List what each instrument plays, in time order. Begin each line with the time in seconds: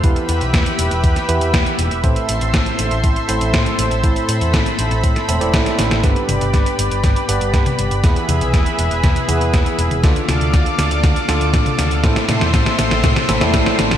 0.04 picked electric bass E1, tine electric piano E3 B3 E4 G4 B4, analog synth pad G4 B4 E5 B5, kick, closed hi-hat
0.16 closed hi-hat
0.29 picked electric bass E2, closed hi-hat
0.41 picked electric bass B1, closed hi-hat
0.54 picked electric bass E1, kick, snare, closed hi-hat
0.66 closed hi-hat
0.79 picked electric bass E1, closed hi-hat
0.91 picked electric bass E1, closed hi-hat
1.04 picked electric bass E2, kick, closed hi-hat
1.16 snare, closed hi-hat
1.29 picked electric bass E2, tine electric piano E3 B3 E4 G4 B4, closed hi-hat
1.41 picked electric bass E2, closed hi-hat
1.54 picked electric bass E1, kick, snare, closed hi-hat
1.66 closed hi-hat
1.79 picked electric bass E1, closed hi-hat
1.91 picked electric bass E1, closed hi-hat
2.04 picked electric bass A1, tine electric piano A2 C4 E4 A4 C5, analog synth pad A4 C5 C6, kick, closed hi-hat
2.16 closed hi-hat
2.29 picked electric bass A1, closed hi-hat
2.41 picked electric bass A1, closed hi-hat
2.54 picked electric bass A1, kick, snare, closed hi-hat
2.66 closed hi-hat
2.79 picked electric bass A1, closed hi-hat
2.91 picked electric bass A1, closed hi-hat
3.04 picked electric bass A1, kick, closed hi-hat
3.16 closed hi-hat
3.29 picked electric bass A1, tine electric piano A2 C4 E4 A4 C5, closed hi-hat
3.41 picked electric bass A1, closed hi-hat
3.54 picked electric bass A2, kick, snare, closed hi-hat
3.66 closed hi-hat
3.79 picked electric bass A1, closed hi-hat
3.91 picked electric bass A1, closed hi-hat
4.03 picked electric bass A1, tine electric piano A2 C4 E4 A4 C5, analog synth pad B5, kick, closed hi-hat
4.16 closed hi-hat
4.28 picked electric bass A2, closed hi-hat
4.41 picked electric bass E2, closed hi-hat
4.54 picked electric bass A1, kick, snare, closed hi-hat
4.66 closed hi-hat
4.79 picked electric bass A1, closed hi-hat
4.91 picked electric bass A1, closed hi-hat
5.04 picked electric bass A2, kick, closed hi-hat
5.16 snare, closed hi-hat
5.29 picked electric bass E1, tine electric piano A2 C4 E4 A4 E5, closed hi-hat
5.41 picked electric bass E1, tine electric piano A2 C4 E4 A4 D5, closed hi-hat
5.54 picked electric bass A1, kick, snare, closed hi-hat
5.66 snare, closed hi-hat
5.79 picked electric bass A1, snare, closed hi-hat
5.91 picked electric bass A1, snare, closed hi-hat
6.03 picked electric bass G1, tine electric piano G2 B3 D4 G4 B4, analog synth pad G4 B4 D5 B5, kick, snare, closed hi-hat
6.16 closed hi-hat
6.29 picked electric bass G1, closed hi-hat, high tom
6.41 picked electric bass G1, closed hi-hat
6.54 picked electric bass G1, kick, snare, closed hi-hat
6.66 closed hi-hat
6.79 picked electric bass G1, closed hi-hat
6.91 picked electric bass G1, closed hi-hat
7.04 picked electric bass G1, kick, snare, closed hi-hat
7.16 closed hi-hat
7.29 picked electric bass G1, tine electric piano G2 B3 D4 G4 B4, closed hi-hat
7.41 picked electric bass G1, closed hi-hat
7.54 picked electric bass G2, kick, snare, closed hi-hat
7.66 closed hi-hat, high tom
7.79 picked electric bass G1, closed hi-hat
7.91 picked electric bass G1, closed hi-hat
8.04 picked electric bass E1, tine electric piano E3 B3 E4 G#4 B4, analog synth pad G#4 B4 E5, kick, snare, closed hi-hat
8.16 closed hi-hat
8.29 picked electric bass E2, closed hi-hat, high tom
8.41 picked electric bass B1, closed hi-hat
8.54 picked electric bass E1, kick, snare, closed hi-hat
8.66 closed hi-hat
8.79 picked electric bass E1, closed hi-hat
8.91 picked electric bass E1, closed hi-hat
9.04 picked electric bass E2, kick, snare, closed hi-hat, high tom
9.16 closed hi-hat
9.29 picked electric bass E2, tine electric piano E3 B3 E4 G#4 B4, closed hi-hat, high tom
9.41 picked electric bass E2, closed hi-hat
9.54 picked electric bass E1, kick, snare, closed hi-hat
9.66 closed hi-hat
9.78 picked electric bass E1, closed hi-hat
9.91 picked electric bass E1, closed hi-hat, high tom
10.04 picked electric bass D2, tine electric piano D3 D4 F4 A4 D5, analog synth pad A4 D5 F5 D6, kick, snare, closed hi-hat
10.16 closed hi-hat
10.28 picked electric bass D2, snare, closed hi-hat, high tom
10.41 picked electric bass D2, closed hi-hat
10.54 picked electric bass D2, kick, snare, closed hi-hat
10.66 closed hi-hat
10.78 picked electric bass D2, snare, closed hi-hat
10.91 picked electric bass D2, closed hi-hat
11.04 picked electric bass D2, kick, snare, closed hi-hat
11.16 closed hi-hat
11.29 picked electric bass D2, tine electric piano D3 D4 F4 A4 D5, snare, closed hi-hat
11.41 picked electric bass D2, closed hi-hat
11.54 picked electric bass A1, kick, snare, closed hi-hat
11.66 closed hi-hat, high tom
11.79 picked electric bass D2, snare, closed hi-hat
11.91 picked electric bass D2, closed hi-hat
12.04 picked electric bass A1, tine electric piano A2 C4 E4 A4 C5, analog synth pad C5 E5 C6, kick, snare, closed hi-hat
12.16 snare, closed hi-hat
12.29 picked electric bass A2, snare, closed hi-hat, high tom
12.41 picked electric bass E2, snare, closed hi-hat
12.54 picked electric bass A1, kick, snare, closed hi-hat
12.66 snare, closed hi-hat
12.79 picked electric bass A1, snare, closed hi-hat
12.91 picked electric bass A1, snare, closed hi-hat
13.04 picked electric bass A2, kick, snare, closed hi-hat, high tom
13.16 snare, closed hi-hat
13.29 picked electric bass A1, tine electric piano A2 C4 E4 A4 E5, snare, closed hi-hat, high tom
13.41 picked electric bass E2, tine electric piano A2 C4 E4 A4 D5, snare, closed hi-hat
13.54 picked electric bass A1, kick, snare, closed hi-hat
13.66 snare, closed hi-hat
13.79 picked electric bass A1, snare, closed hi-hat
13.91 picked electric bass A1, snare, closed hi-hat, high tom